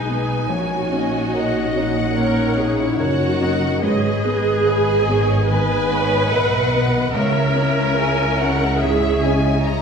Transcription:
Already playing: double bass section B1, grand piano B1 B2 A#3 G#4, cello section B2, french horn section G#3 D#4, viola section D#4, violin section G#4 B4 G#5, clarinet B4
0.09 grand piano B3
0.48 grand piano A#1, double bass section A#1, cello section A#2, french horn section C#4 D#4, viola section F#4, violin section A#4 C#5, clarinet C#5
0.92 grand piano C#4, violin section D#5
1.33 grand piano A#4, clarinet D#5, violin section F#5
1.76 grand piano C#4
2.16 grand piano A#2, viola section A#4, violin section C#5, clarinet C#5
2.57 grand piano C#4, viola section G#4
2.80 viola section E4
2.99 double bass section F#1, cello section F#2, viola section F#4, grand piano A#4, violin section A#4 F#5, clarinet C#5
3.41 grand piano C#4, clarinet D#5
3.82 double bass section G#1, grand piano G#2, cello section G#2, french horn section D#3 B3, viola section G#4, violin section B4 D#5, clarinet C#5
4.23 grand piano B3, clarinet B4
4.65 grand piano B4, violin section B4 D#5 G#5
5.06 grand piano B3, violin section C#5
5.48 grand piano D#3, clarinet G#4, viola section B4, violin section B4 D#5 G#5
5.89 grand piano B3, violin section C#5
6.30 double bass section B1, cello section B2, grand piano A#4, violin section D#5 F#5, clarinet E5
6.74 grand piano B3, clarinet D#5
7.13 double bass section C#2, grand piano C#2, cello section C#3, french horn section G#3 E4, viola section A#4, violin section C#5 E5, clarinet C#5
7.55 grand piano C#4, violin section B4
7.97 grand piano G#4, violin section C#5 G#5, clarinet E5
8.38 grand piano C#4, violin section F#5, clarinet F#5
8.79 viola section G#4, violin section C#5 E5, clarinet E5
8.83 grand piano G#2
9.22 grand piano C#4, clarinet D#5, violin section G#5
9.64 clarinet G#4, grand piano G#4, violin section D#5 A#5

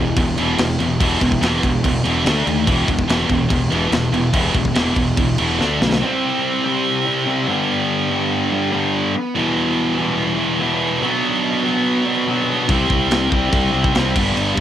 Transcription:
Already playing: fingered electric bass E1, distorted electric guitar E2 B2 E3 B3 E4 G4
0.17 fingered electric bass E1, distorted electric guitar E2 B2, kick, crash
0.38 fingered electric bass E1, distorted electric guitar E2 B2 E3, crash
0.58 fingered electric bass E1, distorted electric guitar E2 B2, snare, crash
0.80 fingered electric bass E1, distorted electric guitar E2 B2, crash
1.00 fingered electric bass E1, distorted electric guitar E2 B2 E3 B3 E4 G4, kick, crash
1.21 fingered electric bass E1, distorted electric guitar E2 B2, kick, crash
1.32 kick
1.41 fingered electric bass E1, distorted electric guitar E2 B2 E3, snare, crash
1.62 fingered electric bass E1, distorted electric guitar E2 B2, kick, crash
1.83 fingered electric bass E1, distorted electric guitar E2 B2, kick, crash
2.04 fingered electric bass E1, distorted electric guitar E2 B2 E3, crash
2.24 fingered electric bass D2, distorted electric guitar D3 A3 D4 A4, snare, crash
2.47 fingered electric bass D#2, distorted electric guitar D3 A3, crash
2.66 fingered electric bass E1, distorted electric guitar E2 B2 E3 B3 E4 G4, kick, crash
2.87 fingered electric bass E1, distorted electric guitar E2 B2, kick, crash
2.99 kick
3.08 fingered electric bass E1, distorted electric guitar E2 B2 E3, snare, crash
3.29 fingered electric bass E1, distorted electric guitar E2 B2, kick, crash
3.50 fingered electric bass E1, distorted electric guitar E2 B2, kick, crash
3.71 fingered electric bass E1, distorted electric guitar E2 B2 E3, crash
3.91 fingered electric bass E1, distorted electric guitar E2 B2, snare, crash
4.13 fingered electric bass E1, distorted electric guitar E2 B2, crash
4.33 fingered electric bass E1, distorted electric guitar E2 B2 E3 B3 E4 G4, kick, crash
4.54 fingered electric bass E1, distorted electric guitar E2 B2, kick, crash
4.65 kick
4.75 fingered electric bass E1, distorted electric guitar E2 B2 E3, snare, crash
4.96 fingered electric bass E1, distorted electric guitar E2 B2, kick, crash
5.17 fingered electric bass E1, distorted electric guitar E2 B2, kick, crash
5.38 fingered electric bass E1, distorted electric guitar E2 B2 E3, crash
5.59 fingered electric bass D2, distorted electric guitar D3 A3 D4 A4, snare
5.81 fingered electric bass B1, distorted electric guitar D3 A3, snare
5.93 snare
6.00 distorted electric guitar C3 G3 C4 E4
6.04 distorted electric guitar C4
6.64 distorted electric guitar C3 G3 C4
7.05 distorted electric guitar C3 G3 C4 E4
7.25 distorted electric guitar C3 G3 C4 E4
7.30 distorted electric guitar C4
7.47 distorted electric guitar G2 D3 G3 B3 D4
8.10 distorted electric guitar G2 D3 G3
8.51 distorted electric guitar G2 D3 G3 B3 D4
8.72 distorted electric guitar G2 D3 G3 B3 D4
9.34 distorted electric guitar E2 B2 E3 G3 B3 E4
9.39 distorted electric guitar E3
9.97 distorted electric guitar E2 B2 E3
10.38 distorted electric guitar E3 G3 B3 E4
10.59 distorted electric guitar E2 B2 E3 G3 B3 E4
11.00 distorted electric guitar B2 F#3 B3 D4
11.04 distorted electric guitar B3
11.63 distorted electric guitar B2 F#3 B3
12.04 distorted electric guitar B2 F#3 B3 D4
12.26 distorted electric guitar B2 F#3 B3 D4
12.68 fingered electric bass C2, distorted electric guitar C3 G3 C4 E4, kick, crash
12.90 fingered electric bass C2, kick
13.11 fingered electric bass C2, snare, crash
13.31 fingered electric bass C2, distorted electric guitar C3 G3 C4, kick
13.52 fingered electric bass C2, kick, crash
13.73 fingered electric bass C2, distorted electric guitar C3 G3 C4 E4
13.84 kick
13.94 fingered electric bass C2, distorted electric guitar C3 G3 C4 E4, snare, crash
14.15 fingered electric bass G1, distorted electric guitar G2 D3 G3 B3 D4, kick, crash
14.37 fingered electric bass G1, crash

